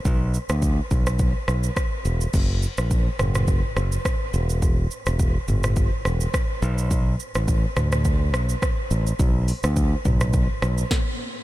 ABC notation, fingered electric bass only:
X:1
M:4/4
L:1/16
Q:"Swing 16ths" 1/4=105
K:Bm
V:1 name="Fingered electric bass" clef=bass
B,,,3 D,,3 B,,,4 B,,,2 z2 E,,,2 | F,,,3 ^A,,,3 F,,,4 F,,,2 z2 E,,,2- | E,,,3 E,,,3 G,,,4 E,,,2 z2 B,,,2- | B,,,3 A,,,3 D,,4 B,,,2 z2 A,,,2 |
B,,,3 D,,3 B,,,4 B,,,2 z4 |]